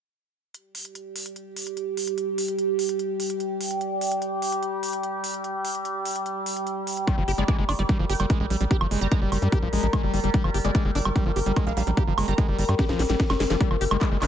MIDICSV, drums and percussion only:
0, 0, Header, 1, 2, 480
1, 0, Start_track
1, 0, Tempo, 408163
1, 640, Time_signature, 4, 2, 24, 8
1, 16783, End_track
2, 0, Start_track
2, 0, Title_t, "Drums"
2, 640, Note_on_c, 9, 42, 65
2, 758, Note_off_c, 9, 42, 0
2, 880, Note_on_c, 9, 46, 99
2, 998, Note_off_c, 9, 46, 0
2, 1000, Note_on_c, 9, 42, 69
2, 1118, Note_off_c, 9, 42, 0
2, 1120, Note_on_c, 9, 42, 69
2, 1238, Note_off_c, 9, 42, 0
2, 1360, Note_on_c, 9, 46, 105
2, 1478, Note_off_c, 9, 46, 0
2, 1480, Note_on_c, 9, 42, 66
2, 1597, Note_off_c, 9, 42, 0
2, 1600, Note_on_c, 9, 42, 66
2, 1718, Note_off_c, 9, 42, 0
2, 1840, Note_on_c, 9, 46, 104
2, 1958, Note_off_c, 9, 46, 0
2, 1960, Note_on_c, 9, 42, 68
2, 2078, Note_off_c, 9, 42, 0
2, 2080, Note_on_c, 9, 42, 67
2, 2198, Note_off_c, 9, 42, 0
2, 2320, Note_on_c, 9, 46, 106
2, 2438, Note_off_c, 9, 46, 0
2, 2440, Note_on_c, 9, 42, 69
2, 2558, Note_off_c, 9, 42, 0
2, 2561, Note_on_c, 9, 42, 63
2, 2678, Note_off_c, 9, 42, 0
2, 2801, Note_on_c, 9, 46, 107
2, 2918, Note_off_c, 9, 46, 0
2, 2921, Note_on_c, 9, 42, 62
2, 3038, Note_off_c, 9, 42, 0
2, 3040, Note_on_c, 9, 42, 67
2, 3158, Note_off_c, 9, 42, 0
2, 3280, Note_on_c, 9, 46, 102
2, 3398, Note_off_c, 9, 46, 0
2, 3400, Note_on_c, 9, 42, 67
2, 3518, Note_off_c, 9, 42, 0
2, 3520, Note_on_c, 9, 42, 65
2, 3638, Note_off_c, 9, 42, 0
2, 3760, Note_on_c, 9, 46, 111
2, 3878, Note_off_c, 9, 46, 0
2, 3880, Note_on_c, 9, 42, 69
2, 3998, Note_off_c, 9, 42, 0
2, 4000, Note_on_c, 9, 42, 64
2, 4118, Note_off_c, 9, 42, 0
2, 4240, Note_on_c, 9, 46, 111
2, 4358, Note_off_c, 9, 46, 0
2, 4360, Note_on_c, 9, 42, 67
2, 4478, Note_off_c, 9, 42, 0
2, 4480, Note_on_c, 9, 42, 63
2, 4598, Note_off_c, 9, 42, 0
2, 4720, Note_on_c, 9, 46, 106
2, 4838, Note_off_c, 9, 46, 0
2, 4840, Note_on_c, 9, 42, 64
2, 4958, Note_off_c, 9, 42, 0
2, 4960, Note_on_c, 9, 42, 62
2, 5078, Note_off_c, 9, 42, 0
2, 5200, Note_on_c, 9, 46, 107
2, 5318, Note_off_c, 9, 46, 0
2, 5320, Note_on_c, 9, 42, 67
2, 5438, Note_off_c, 9, 42, 0
2, 5441, Note_on_c, 9, 42, 63
2, 5558, Note_off_c, 9, 42, 0
2, 5680, Note_on_c, 9, 46, 108
2, 5798, Note_off_c, 9, 46, 0
2, 5800, Note_on_c, 9, 42, 62
2, 5918, Note_off_c, 9, 42, 0
2, 5920, Note_on_c, 9, 42, 66
2, 6038, Note_off_c, 9, 42, 0
2, 6160, Note_on_c, 9, 46, 106
2, 6278, Note_off_c, 9, 46, 0
2, 6280, Note_on_c, 9, 42, 64
2, 6398, Note_off_c, 9, 42, 0
2, 6400, Note_on_c, 9, 42, 59
2, 6518, Note_off_c, 9, 42, 0
2, 6640, Note_on_c, 9, 46, 102
2, 6758, Note_off_c, 9, 46, 0
2, 6760, Note_on_c, 9, 42, 60
2, 6878, Note_off_c, 9, 42, 0
2, 6880, Note_on_c, 9, 42, 61
2, 6998, Note_off_c, 9, 42, 0
2, 7120, Note_on_c, 9, 46, 106
2, 7238, Note_off_c, 9, 46, 0
2, 7241, Note_on_c, 9, 42, 63
2, 7358, Note_off_c, 9, 42, 0
2, 7360, Note_on_c, 9, 42, 64
2, 7478, Note_off_c, 9, 42, 0
2, 7600, Note_on_c, 9, 46, 107
2, 7718, Note_off_c, 9, 46, 0
2, 7721, Note_on_c, 9, 42, 62
2, 7838, Note_off_c, 9, 42, 0
2, 7840, Note_on_c, 9, 42, 60
2, 7958, Note_off_c, 9, 42, 0
2, 8080, Note_on_c, 9, 46, 105
2, 8198, Note_off_c, 9, 46, 0
2, 8200, Note_on_c, 9, 42, 66
2, 8318, Note_off_c, 9, 42, 0
2, 8320, Note_on_c, 9, 36, 117
2, 8320, Note_on_c, 9, 42, 60
2, 8320, Note_on_c, 9, 76, 40
2, 8438, Note_off_c, 9, 36, 0
2, 8438, Note_off_c, 9, 42, 0
2, 8438, Note_off_c, 9, 76, 0
2, 8560, Note_on_c, 9, 46, 100
2, 8678, Note_off_c, 9, 46, 0
2, 8680, Note_on_c, 9, 42, 61
2, 8798, Note_off_c, 9, 42, 0
2, 8800, Note_on_c, 9, 36, 112
2, 8800, Note_on_c, 9, 42, 63
2, 8918, Note_off_c, 9, 36, 0
2, 8918, Note_off_c, 9, 42, 0
2, 9040, Note_on_c, 9, 46, 98
2, 9040, Note_on_c, 9, 76, 79
2, 9158, Note_off_c, 9, 46, 0
2, 9158, Note_off_c, 9, 76, 0
2, 9160, Note_on_c, 9, 42, 62
2, 9278, Note_off_c, 9, 42, 0
2, 9280, Note_on_c, 9, 36, 116
2, 9280, Note_on_c, 9, 42, 62
2, 9398, Note_off_c, 9, 36, 0
2, 9398, Note_off_c, 9, 42, 0
2, 9520, Note_on_c, 9, 46, 101
2, 9638, Note_off_c, 9, 46, 0
2, 9640, Note_on_c, 9, 42, 63
2, 9640, Note_on_c, 9, 76, 40
2, 9758, Note_off_c, 9, 42, 0
2, 9758, Note_off_c, 9, 76, 0
2, 9760, Note_on_c, 9, 36, 115
2, 9760, Note_on_c, 9, 42, 65
2, 9878, Note_off_c, 9, 36, 0
2, 9878, Note_off_c, 9, 42, 0
2, 10000, Note_on_c, 9, 46, 102
2, 10118, Note_off_c, 9, 46, 0
2, 10120, Note_on_c, 9, 42, 67
2, 10238, Note_off_c, 9, 42, 0
2, 10240, Note_on_c, 9, 36, 109
2, 10240, Note_on_c, 9, 42, 65
2, 10358, Note_off_c, 9, 36, 0
2, 10358, Note_off_c, 9, 42, 0
2, 10360, Note_on_c, 9, 76, 80
2, 10478, Note_off_c, 9, 76, 0
2, 10480, Note_on_c, 9, 46, 99
2, 10598, Note_off_c, 9, 46, 0
2, 10600, Note_on_c, 9, 42, 63
2, 10718, Note_off_c, 9, 42, 0
2, 10720, Note_on_c, 9, 36, 109
2, 10720, Note_on_c, 9, 42, 66
2, 10837, Note_off_c, 9, 36, 0
2, 10838, Note_off_c, 9, 42, 0
2, 10960, Note_on_c, 9, 46, 99
2, 10960, Note_on_c, 9, 76, 38
2, 11078, Note_off_c, 9, 46, 0
2, 11078, Note_off_c, 9, 76, 0
2, 11080, Note_on_c, 9, 42, 65
2, 11197, Note_off_c, 9, 42, 0
2, 11200, Note_on_c, 9, 36, 111
2, 11200, Note_on_c, 9, 42, 66
2, 11317, Note_off_c, 9, 36, 0
2, 11317, Note_off_c, 9, 42, 0
2, 11440, Note_on_c, 9, 46, 101
2, 11558, Note_off_c, 9, 46, 0
2, 11560, Note_on_c, 9, 42, 64
2, 11678, Note_off_c, 9, 42, 0
2, 11680, Note_on_c, 9, 36, 112
2, 11680, Note_on_c, 9, 42, 64
2, 11680, Note_on_c, 9, 76, 80
2, 11797, Note_off_c, 9, 36, 0
2, 11798, Note_off_c, 9, 42, 0
2, 11798, Note_off_c, 9, 76, 0
2, 11920, Note_on_c, 9, 46, 97
2, 12037, Note_off_c, 9, 46, 0
2, 12040, Note_on_c, 9, 42, 67
2, 12158, Note_off_c, 9, 42, 0
2, 12160, Note_on_c, 9, 36, 107
2, 12160, Note_on_c, 9, 42, 65
2, 12277, Note_off_c, 9, 36, 0
2, 12278, Note_off_c, 9, 42, 0
2, 12280, Note_on_c, 9, 76, 41
2, 12398, Note_off_c, 9, 76, 0
2, 12400, Note_on_c, 9, 46, 96
2, 12518, Note_off_c, 9, 46, 0
2, 12520, Note_on_c, 9, 42, 69
2, 12637, Note_off_c, 9, 42, 0
2, 12640, Note_on_c, 9, 36, 108
2, 12640, Note_on_c, 9, 42, 64
2, 12757, Note_off_c, 9, 36, 0
2, 12757, Note_off_c, 9, 42, 0
2, 12880, Note_on_c, 9, 46, 96
2, 12997, Note_off_c, 9, 46, 0
2, 13000, Note_on_c, 9, 42, 67
2, 13000, Note_on_c, 9, 76, 81
2, 13117, Note_off_c, 9, 42, 0
2, 13117, Note_off_c, 9, 76, 0
2, 13120, Note_on_c, 9, 36, 113
2, 13120, Note_on_c, 9, 42, 67
2, 13237, Note_off_c, 9, 36, 0
2, 13237, Note_off_c, 9, 42, 0
2, 13360, Note_on_c, 9, 46, 100
2, 13477, Note_off_c, 9, 46, 0
2, 13480, Note_on_c, 9, 42, 68
2, 13598, Note_off_c, 9, 42, 0
2, 13600, Note_on_c, 9, 36, 114
2, 13600, Note_on_c, 9, 42, 64
2, 13600, Note_on_c, 9, 76, 41
2, 13717, Note_off_c, 9, 36, 0
2, 13717, Note_off_c, 9, 42, 0
2, 13717, Note_off_c, 9, 76, 0
2, 13840, Note_on_c, 9, 46, 96
2, 13958, Note_off_c, 9, 46, 0
2, 13960, Note_on_c, 9, 42, 70
2, 14078, Note_off_c, 9, 42, 0
2, 14080, Note_on_c, 9, 36, 115
2, 14080, Note_on_c, 9, 42, 66
2, 14197, Note_off_c, 9, 36, 0
2, 14198, Note_off_c, 9, 42, 0
2, 14320, Note_on_c, 9, 46, 100
2, 14320, Note_on_c, 9, 76, 74
2, 14438, Note_off_c, 9, 46, 0
2, 14438, Note_off_c, 9, 76, 0
2, 14440, Note_on_c, 9, 42, 71
2, 14557, Note_off_c, 9, 42, 0
2, 14560, Note_on_c, 9, 36, 117
2, 14560, Note_on_c, 9, 42, 67
2, 14677, Note_off_c, 9, 42, 0
2, 14678, Note_off_c, 9, 36, 0
2, 14800, Note_on_c, 9, 46, 102
2, 14918, Note_off_c, 9, 46, 0
2, 14920, Note_on_c, 9, 42, 69
2, 14920, Note_on_c, 9, 76, 38
2, 15038, Note_off_c, 9, 42, 0
2, 15038, Note_off_c, 9, 76, 0
2, 15040, Note_on_c, 9, 36, 112
2, 15040, Note_on_c, 9, 38, 62
2, 15040, Note_on_c, 9, 42, 68
2, 15158, Note_off_c, 9, 36, 0
2, 15158, Note_off_c, 9, 38, 0
2, 15158, Note_off_c, 9, 42, 0
2, 15160, Note_on_c, 9, 38, 57
2, 15278, Note_off_c, 9, 38, 0
2, 15280, Note_on_c, 9, 38, 71
2, 15280, Note_on_c, 9, 46, 101
2, 15398, Note_off_c, 9, 38, 0
2, 15398, Note_off_c, 9, 46, 0
2, 15400, Note_on_c, 9, 38, 70
2, 15400, Note_on_c, 9, 42, 72
2, 15517, Note_off_c, 9, 38, 0
2, 15517, Note_off_c, 9, 42, 0
2, 15520, Note_on_c, 9, 36, 116
2, 15520, Note_on_c, 9, 38, 81
2, 15520, Note_on_c, 9, 42, 67
2, 15638, Note_off_c, 9, 36, 0
2, 15638, Note_off_c, 9, 38, 0
2, 15638, Note_off_c, 9, 42, 0
2, 15640, Note_on_c, 9, 38, 80
2, 15640, Note_on_c, 9, 76, 75
2, 15758, Note_off_c, 9, 38, 0
2, 15758, Note_off_c, 9, 76, 0
2, 15760, Note_on_c, 9, 38, 99
2, 15760, Note_on_c, 9, 46, 101
2, 15878, Note_off_c, 9, 38, 0
2, 15878, Note_off_c, 9, 46, 0
2, 15880, Note_on_c, 9, 38, 89
2, 15880, Note_on_c, 9, 42, 69
2, 15998, Note_off_c, 9, 38, 0
2, 15998, Note_off_c, 9, 42, 0
2, 16000, Note_on_c, 9, 36, 120
2, 16000, Note_on_c, 9, 42, 69
2, 16118, Note_off_c, 9, 36, 0
2, 16118, Note_off_c, 9, 42, 0
2, 16121, Note_on_c, 9, 76, 38
2, 16238, Note_off_c, 9, 76, 0
2, 16240, Note_on_c, 9, 46, 105
2, 16358, Note_off_c, 9, 46, 0
2, 16361, Note_on_c, 9, 42, 68
2, 16361, Note_on_c, 9, 76, 76
2, 16478, Note_off_c, 9, 42, 0
2, 16478, Note_off_c, 9, 76, 0
2, 16480, Note_on_c, 9, 36, 120
2, 16480, Note_on_c, 9, 39, 126
2, 16480, Note_on_c, 9, 42, 69
2, 16598, Note_off_c, 9, 36, 0
2, 16598, Note_off_c, 9, 39, 0
2, 16598, Note_off_c, 9, 42, 0
2, 16720, Note_on_c, 9, 39, 63
2, 16720, Note_on_c, 9, 46, 104
2, 16720, Note_on_c, 9, 76, 37
2, 16783, Note_off_c, 9, 39, 0
2, 16783, Note_off_c, 9, 46, 0
2, 16783, Note_off_c, 9, 76, 0
2, 16783, End_track
0, 0, End_of_file